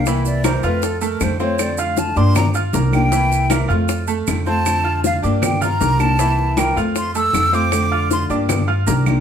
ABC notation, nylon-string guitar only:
X:1
M:4/4
L:1/8
Q:1/4=157
K:F
V:1 name="Nylon-string guitar"
[C,E,B,CE]3 [A,CF]2 z [D,A,CF] [A,CF] | [D,A,CF]3 [F,B,DG]2 z [F,B,DG] [F,B,DG] | [C,E,B,CE]3 [A,CF]2 z [D,A,CF] [A,CF] | [D,A,CF]3 [F,B,DG]2 z [F,B,DG] [F,B,DG] |
[C,E,B,CE]3 [A,CF]2 z [D,A,CF] [A,CF] | [D,A,CF]3 [F,B,DG]2 z [F,B,DG] [F,B,DG] |]